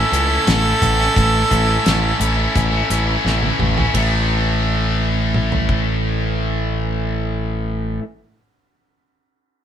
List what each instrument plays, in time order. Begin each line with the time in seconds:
Already playing: distorted electric guitar A2 A3 C#4 E4, harmonica A4
0.10 picked electric bass C#2, distorted electric guitar E3 A3 C#4 E4, closed hi-hat
0.28 distorted electric guitar A3 C#4 E4
0.44 picked electric bass A1, distorted electric guitar A2 E3 A3 C#4 E4, snare, closed hi-hat
0.62 distorted electric guitar A3 C#4 E4
0.82 picked electric bass A1, kick, closed hi-hat
0.97 distorted electric guitar A3 C#4 E4, snare
1.15 picked electric bass A1, distorted electric guitar A2 E3 A3 C#4 E4, kick, closed hi-hat
1.49 picked electric bass A1, distorted electric guitar E3 A3 C#4 E4, kick, closed hi-hat
1.67 distorted electric guitar A3 C#4 E4
1.83 picked electric bass A1, distorted electric guitar A2 E3 A3 C#4 E4, snare, closed hi-hat
2.18 picked electric bass A1, distorted electric guitar E3 A3 C#4, closed hi-hat
2.23 distorted electric guitar E4
2.37 distorted electric guitar A3 C#4 E4
2.56 picked electric bass A1, kick, closed hi-hat
2.70 distorted electric guitar A3 C#4 E4
2.89 picked electric bass A1, distorted electric guitar E3 A3 C#4 E4, closed hi-hat
3.06 distorted electric guitar A3 C#4 E4
3.24 picked electric bass A1, distorted electric guitar A2 E3 A3 C#4 E4, snare
3.43 distorted electric guitar A3 C#4 E4, high tom
3.59 picked electric bass A1, mid tom
3.76 distorted electric guitar A3 C#4 E4, floor tom
3.93 picked electric bass A1, distorted electric guitar A2 E3, kick, ride
3.97 distorted electric guitar A3
5.34 mid tom
5.52 floor tom
5.69 kick